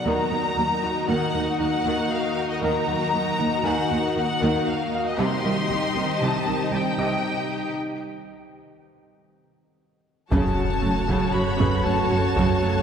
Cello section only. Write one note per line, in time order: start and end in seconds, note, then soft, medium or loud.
0.06 0.14 D#2 medium
0.31 0.39 D#2 soft
0.57 0.65 D#2 soft
0.83 0.91 D#2 soft
1.09 1.17 D#2 medium
1.34 1.42 D#2 soft
1.60 1.68 D#2 soft
1.86 1.94 D#2 medium
2.63 2.71 D#2 medium
2.89 2.97 D#2 soft
3.14 3.22 D#2 soft
3.40 3.48 D#2 soft
3.65 3.73 D#2 medium
3.91 3.99 D#2 soft
4.17 4.25 D#2 soft
4.42 4.50 D#2 medium
5.19 5.27 C2 medium
5.44 5.52 C2 soft
5.70 5.78 C2 soft
5.96 6.04 C2 soft
6.21 6.29 C2 medium
6.47 6.55 C2 soft
6.72 6.80 C2 soft
6.99 7.07 C2 medium
10.31 10.39 F#2 medium
10.83 10.91 F#2 soft
11.08 11.16 F#2 medium
11.34 11.42 F#2 soft
11.60 11.68 F#2 medium
11.85 11.93 F#2 soft
12.11 12.19 F#2 soft
12.37 12.45 F#2 medium
12.62 12.70 F#2 soft